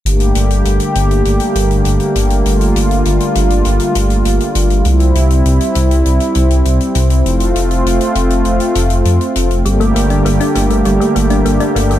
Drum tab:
HH |xxxxxxxxxxxxxxxx|xxxxxxxxxxxxxxxx|xxxxxxxxxxxxxxxx|xxxxxxxxxxxxxxxx|

HH |xxxxxxxxxxxxxxxx|